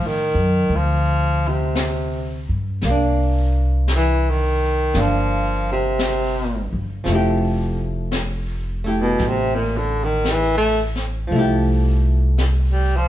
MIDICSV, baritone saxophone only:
0, 0, Header, 1, 2, 480
1, 0, Start_track
1, 0, Key_signature, -1, "major"
1, 0, Tempo, 1063830
1, 1271, Time_signature, 4, 2, 24, 8
1, 5902, End_track
2, 0, Start_track
2, 0, Title_t, "Baritone saxophone"
2, 0, Program_c, 0, 67
2, 29, Note_on_c, 0, 51, 69
2, 342, Note_on_c, 0, 53, 76
2, 349, Note_off_c, 0, 51, 0
2, 666, Note_on_c, 0, 48, 56
2, 673, Note_off_c, 0, 53, 0
2, 1129, Note_off_c, 0, 48, 0
2, 1787, Note_on_c, 0, 52, 69
2, 1939, Note_on_c, 0, 51, 72
2, 1946, Note_off_c, 0, 52, 0
2, 2259, Note_on_c, 0, 53, 76
2, 2266, Note_off_c, 0, 51, 0
2, 2563, Note_off_c, 0, 53, 0
2, 2581, Note_on_c, 0, 48, 71
2, 3025, Note_off_c, 0, 48, 0
2, 4065, Note_on_c, 0, 47, 69
2, 4188, Note_on_c, 0, 48, 74
2, 4195, Note_off_c, 0, 47, 0
2, 4309, Note_on_c, 0, 46, 66
2, 4316, Note_off_c, 0, 48, 0
2, 4411, Note_on_c, 0, 50, 73
2, 4417, Note_off_c, 0, 46, 0
2, 4531, Note_on_c, 0, 51, 73
2, 4538, Note_off_c, 0, 50, 0
2, 4654, Note_on_c, 0, 52, 81
2, 4661, Note_off_c, 0, 51, 0
2, 4767, Note_off_c, 0, 52, 0
2, 4770, Note_on_c, 0, 57, 86
2, 4874, Note_off_c, 0, 57, 0
2, 5740, Note_on_c, 0, 55, 70
2, 5850, Note_on_c, 0, 53, 86
2, 5856, Note_off_c, 0, 55, 0
2, 5902, Note_off_c, 0, 53, 0
2, 5902, End_track
0, 0, End_of_file